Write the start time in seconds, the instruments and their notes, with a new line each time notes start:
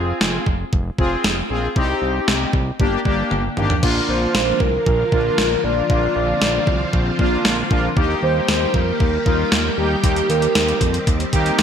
Already playing: analog synth bass F1, analog polysynth C4 F4 G#4
0.21 analog synth bass F1, snare
0.46 analog synth bass F1, kick
0.73 analog synth bass F1, kick
0.98 analog synth bass F1, analog polysynth C4 F4 G#4, kick
1.24 analog synth bass F1, snare
1.50 analog synth bass A#1, analog polysynth C4 F4 G#4
1.76 analog synth bass C2, analog polysynth C4 D#4 G4, kick
2.02 analog synth bass C2
2.28 analog synth bass C2, snare
2.53 analog synth bass C2, kick
2.79 analog synth bass G1, analog polysynth A#3 D4 G4, kick
3.05 analog synth bass G1, analog polysynth A#3 D4 G4, kick
3.31 analog synth bass G1, high tom
3.57 analog synth bass G#1, analog polysynth A#3 D4 G4, mid tom
3.70 floor tom
3.83 analog synth bass A#1, string machine D3 F3 A#3 F4, analog polysynth A#3 D4 F4, kick, crash
4.09 analog synth bass A#1, soft synth lead C5
4.35 analog synth bass A#1, snare
4.60 analog synth bass C2, soft synth lead A#4, kick
4.86 analog synth bass A#1, kick
5.12 analog synth bass A#1, analog polysynth A#3 D4 F4, kick
5.38 analog synth bass A#1, snare
5.64 analog synth bass A#1, analog polysynth A#3 D4 F4, soft synth lead D5
5.90 analog synth bass A#1, analog polysynth A#3 D4 F4, string machine C4, kick
6.16 analog synth bass A#1, soft synth lead D5
6.42 analog synth bass A#1, snare
6.67 analog synth bass C2, kick
6.93 analog synth bass A#1, kick
7.19 analog synth bass A#1, analog polysynth A#3 D4 F4, kick
7.45 analog synth bass A#1, snare
7.71 analog synth bass A#1, analog polysynth A#3 D4 F4, kick
7.97 analog synth bass D#2, string machine D#3 G3 A#3 G4, analog polysynth A#3 D#4 G4, kick
8.23 analog synth bass D#2, soft synth lead C5
8.48 analog synth bass D#2, snare
8.74 analog synth bass F2, soft synth lead A#4, kick
9.00 analog synth bass D#2, kick
9.26 analog synth bass D#2, analog polysynth A#3 D#4 F4, kick
9.52 analog synth bass D#2, snare
9.78 analog synth bass D#2, analog polysynth A#3 D#4 G4, soft synth lead G4
10.04 analog synth bass D#2, analog polysynth A#3 D#4 G4, string machine C4, kick, closed hi-hat
10.16 closed hi-hat
10.30 analog synth bass D#2, soft synth lead A#4, closed hi-hat
10.42 closed hi-hat
10.55 analog synth bass D#2, snare, closed hi-hat
10.68 closed hi-hat
10.81 analog synth bass F2, kick, closed hi-hat
10.94 closed hi-hat
11.07 analog synth bass D#2, kick, closed hi-hat
11.20 closed hi-hat
11.33 analog synth bass D#2, analog polysynth A#3 D#4 G4, kick, closed hi-hat
11.46 closed hi-hat
11.58 analog synth bass D#2, snare, closed hi-hat